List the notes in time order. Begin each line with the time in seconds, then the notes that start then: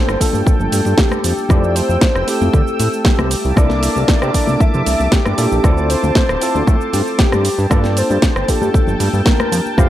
Already playing: A#3 D4 F4 A4 C5 G5
0.09 G1, cross-stick, shaker
0.20 A#3 D4 F4 A4, kick, open hi-hat, shaker
0.33 G2, high conga, shaker
0.46 A4, kick, shaker
0.60 G1, low conga, shaker
0.72 G2, open hi-hat, high conga, shaker
0.85 G2, muted conga, shaker
0.98 G4, kick, snare, shaker
1.11 cross-stick, high conga, shaker
1.24 F2, open hi-hat, shaker
1.38 muted conga, shaker
1.49 F2 A3 C4 E4 G4 D5 G5 E6, kick, cross-stick, high conga, shaker
1.64 shaker
1.75 C5, open hi-hat, shaker
1.89 F2, muted conga, high conga, shaker
2.01 kick, snare, shaker
2.15 F1, cross-stick, shaker
2.27 A3 C4 E4 G4 A4, open hi-hat, shaker
2.41 F2, high conga, shaker
2.53 D3 A4, kick, shaker
2.67 shaker
2.80 A2, open hi-hat, high conga, shaker
2.93 shaker
3.05 G4, kick, snare, shaker
3.19 C2, cross-stick, high conga, shaker
3.31 A#3 E5 A5 D6, open hi-hat, shaker
3.45 C2, shaker
3.56 C2 A#3 D4 E4 A4 D5, kick, cross-stick, high conga, shaker
3.70 snare, shaker
3.83 open hi-hat, shaker
3.96 C2, muted conga, high conga, shaker
4.08 D5, kick, snare, shaker
4.22 C3, cross-stick, shaker
4.34 A#3 D4 E4 A4, kick, open hi-hat, shaker
4.47 C2, high conga, shaker
4.60 E5, kick, shaker
4.74 C3, low conga, shaker
4.86 C2, open hi-hat, high conga, shaker
5.00 C2, muted conga, shaker
5.12 G4, kick, snare, shaker
5.26 G2, cross-stick, high conga, shaker
5.38 A#2 A#3 D4 E4 A4, open hi-hat, shaker
5.52 A#1, muted conga, shaker
5.63 D2 C4 E4 F4 A4 C5 D5 A5, kick, cross-stick, high conga, shaker
5.78 shaker
5.90 C5, open hi-hat, shaker
6.03 D2, muted conga, high conga, shaker
6.15 kick, snare, shaker
6.29 D1, cross-stick, shaker
6.41 C4 E4 F4 A4, open hi-hat, shaker
6.55 D2, high conga, shaker
6.67 A2 A4, kick, shaker
6.81 shaker
6.93 G2, open hi-hat, high conga, shaker
7.07 shaker
7.19 G4, kick, snare, shaker
7.32 G2, cross-stick, high conga, shaker
7.45 G5 A5, open hi-hat, shaker
7.58 G2, shaker
7.70 G2 A#3 D4 F4 A4 D5, kick, cross-stick, high conga, shaker
7.84 snare, shaker
7.97 C5, open hi-hat, shaker
8.10 G2, muted conga, high conga, shaker
8.22 kick, snare, shaker
8.36 G1, cross-stick, shaker
8.48 A#3 D4 F4 G4 A4, kick, open hi-hat, shaker
8.62 G2, high conga, shaker
8.74 A4, kick, shaker
8.87 G1, low conga, shaker
9.00 G2, open hi-hat, high conga, shaker
9.13 G2, muted conga, shaker
9.26 A#4, kick, snare, shaker
9.40 cross-stick, high conga, shaker
9.52 F2, open hi-hat, shaker
9.66 muted conga, shaker
9.77 F2 A3 C4 E4 G4 F5 E6, kick, cross-stick, high conga, shaker